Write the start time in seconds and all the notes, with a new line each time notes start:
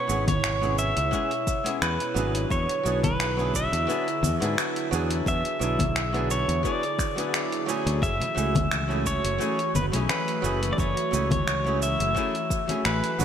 Already playing: B2 E4 C#5
0.07 G#1 G#3 B3 C#4 E4, cabasa
0.11 G#4
0.28 C#5, kick, closed hi-hat, low conga, cabasa
0.44 finger snap, cabasa
0.61 G#3 B3 C#4 E4 G#4, cabasa
0.78 E5, cabasa
0.97 C#2, closed hi-hat, cabasa
1.11 G#3 B3 C#4 E4 G#4, kick, cabasa
1.31 closed hi-hat, cabasa
1.47 kick, cabasa
1.64 G#3 B3 C#4 E4 G#4, closed hi-hat, cabasa
1.82 E2 B4, finger snap, cabasa
2.00 closed hi-hat, cabasa
2.14 G#1 F#3 B3 D4 E4 G#4, cabasa
2.35 closed hi-hat, cabasa
2.50 E2 D3 G#4 C#5, kick, cabasa
2.69 closed hi-hat, cabasa
2.83 B1 F#3 B3 D4 E4, cabasa
2.87 G#4
3.03 B4, kick, closed hi-hat, low conga, cabasa
3.20 finger snap, cabasa
3.37 F#3 B3 D4 E4 G#4, cabasa
3.54 E5, kick, cabasa
3.73 E2, closed hi-hat, cabasa
3.87 F#3 B3 D4 E4 G#4, cabasa
4.08 closed hi-hat, cabasa
4.23 E2, low conga, cabasa
4.40 G#2 F#3 B3 D4 E4 G#4, closed hi-hat, cabasa
4.58 finger snap, cabasa
4.76 closed hi-hat, cabasa
4.91 E2 F#3 B3 D4 E4 G#4, cabasa
5.11 closed hi-hat, cabasa
5.26 E2 E5, kick, cabasa
5.45 closed hi-hat, cabasa
5.59 B1 F#3 B3 D4 E4 G#4, cabasa
5.79 kick, closed hi-hat, low conga, cabasa
5.96 finger snap, cabasa
6.13 F#3 B3 D4 E4 G#4, closed hi-hat, cabasa
6.30 C#5, cabasa
6.48 E2, closed hi-hat, cabasa
6.63 F#3 B3 D4 E4 G#4 D5, kick, cabasa
6.83 closed hi-hat, cabasa
6.99 finger snap, kick, cabasa
7.16 F#3 B3 D4 E4, closed hi-hat, cabasa
7.20 G#4
7.34 finger snap, cabasa
7.52 closed hi-hat, cabasa
7.66 F#3 A3 C#4 E4 G#4, cabasa
7.86 D2, closed hi-hat, cabasa
8.02 F#1 E3 A3 F#4 E5, kick, cabasa
8.20 closed hi-hat, low conga, cabasa
8.35 C#2 F#3 A3 C#4 E4 G#4, cabasa
8.55 kick, closed hi-hat, high conga, low conga, cabasa
8.71 finger snap, cabasa
8.88 F#3 A3 C#4 E4 G#4, cabasa
9.06 C#5, kick, cabasa
9.24 F#1, closed hi-hat, cabasa
9.38 F#3 A3 C#4 E4 G#4, cabasa
9.59 closed hi-hat, cabasa
9.75 F#1 B4, low conga, cabasa
9.92 B1 F#3 A3 C#4 E4 G#4, closed hi-hat, low conga, cabasa
10.09 B4, finger snap, high conga, cabasa
10.28 closed hi-hat, cabasa
10.42 F#1 F#3 A3 C#4 E4 G#4, cabasa
10.63 closed hi-hat, cabasa
10.73 D5
10.78 F#1 C#5, kick, cabasa
10.97 closed hi-hat, cabasa
11.11 C#2 F#3 A3 C#4 E4 G#4, cabasa
11.31 C#5, kick, closed hi-hat, high conga, low conga, cabasa
11.48 finger snap, cabasa
11.64 F#3 A3 C#4 E4 G#4, cabasa
11.82 E5, cabasa
12.00 F#1, closed hi-hat, cabasa
12.15 F#3 A3 C#4 E4, kick, cabasa
12.19 G#4
12.35 closed hi-hat, cabasa
12.50 kick, cabasa
12.68 F#3 A3 C#4 E4 G#4, closed hi-hat, high conga, cabasa
12.85 A1 B4, finger snap, cabasa
13.04 closed hi-hat, cabasa
13.18 B1 D3 F#3 A3 B3 C#4 D4, high conga, low conga, cabasa